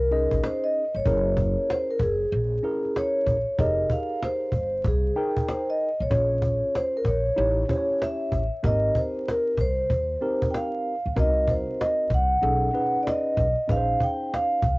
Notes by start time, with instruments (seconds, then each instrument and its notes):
Already playing: upright bass C2, vibraphone A#4
0.11 tine electric piano C#4 D#4 G#4 D#5, cajon slap
0.31 upright bass A#1, cajon bass
0.44 vibraphone C5, cajon slap
0.64 vibraphone D#5
0.95 upright bass G1, vibraphone C#5
1.05 upright bass F#1, tine electric piano C#4 E4 G#4 A#4, cajon bass
1.37 cajon bass
1.70 vibraphone C5, cajon slap
1.91 vibraphone A#4
1.99 upright bass F#1, vibraphone G#4, cajon bass
2.32 upright bass A#1, cajon slap
2.63 tine electric piano C#4 E4 G#4 A#4, cajon slap
2.85 cajon slap
2.96 vibraphone C#5, cajon slap
3.26 upright bass A#1, cajon bass
3.58 upright bass F1, tine electric piano D#4 G4 G#4 A#4, vibraphone D#5, cajon bass
3.90 vibraphone F5, cajon bass
4.23 vibraphone C5, cajon slap
4.52 upright bass G1, cajon bass
4.84 upright bass C2, vibraphone G#4, cajon bass
5.16 tine electric piano D#4 G#4 A#4 G5, cajon slap
5.37 cajon bass
5.48 vibraphone C5, cajon slap
5.70 vibraphone D#5
6.00 upright bass B1, vibraphone C#5
6.10 upright bass A#1, tine electric piano C#4 F4 G#4 C#5, cajon bass
6.42 cajon bass
6.75 vibraphone C5, cajon slap
6.97 vibraphone A#4
7.04 upright bass A#1, vibraphone C#5, cajon bass
7.26 cajon slap
7.36 upright bass A1, tine electric piano D#4 E4 G4 C#5, cajon slap
7.69 tine electric piano C#4 E4 G4 C5, cajon bass
7.76 tine electric piano C#5
7.90 cajon slap
8.02 vibraphone E5, cajon slap
8.32 upright bass A1, cajon bass
8.63 upright bass G#1, tine electric piano A#3 D#4 G4 A#4, vibraphone D#5, cajon bass
8.69 tine electric piano C4
8.95 vibraphone C5, cajon bass
9.28 vibraphone A#4, cajon slap
9.57 upright bass C2, vibraphone C5, cajon bass
9.90 upright bass D#2, cajon bass
10.21 tine electric piano C4 D#4 G4 A#4, cajon slap
10.42 cajon bass
10.51 vibraphone G5, cajon slap
10.56 vibraphone F5
11.06 upright bass C#2
11.16 upright bass C2, tine electric piano C4 C#4 F#4 A#4, vibraphone D#5, cajon bass
11.23 tine electric piano D#4
11.48 vibraphone C5, cajon bass
11.81 vibraphone D#5, cajon slap
12.10 upright bass C2, cajon bass
12.14 vibraphone F#5
12.42 upright bass B1, tine electric piano C#4 D#4 G#4 A4, cajon slap
12.73 tine electric piano C#4 D#4 G#4 B4, cajon slap
12.96 cajon slap
13.03 vibraphone D5, cajon slap
13.08 vibraphone D#5
13.37 upright bass B1, cajon bass
13.68 upright bass A#1, tine electric piano C#4 D#4 G#4 B4, vibraphone F5, cajon bass
13.76 tine electric piano C5
14.00 vibraphone G5, cajon bass
14.34 vibraphone F5, cajon slap
14.62 upright bass C2, cajon bass